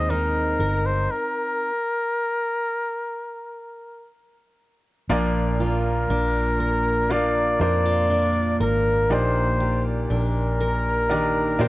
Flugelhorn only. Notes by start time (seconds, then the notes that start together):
Already playing: D#5
0.10 A#4
0.86 C5
1.11 A#4
5.61 A#4
7.12 D5
7.62 D5
8.62 A#4
9.12 C5
10.12 A#4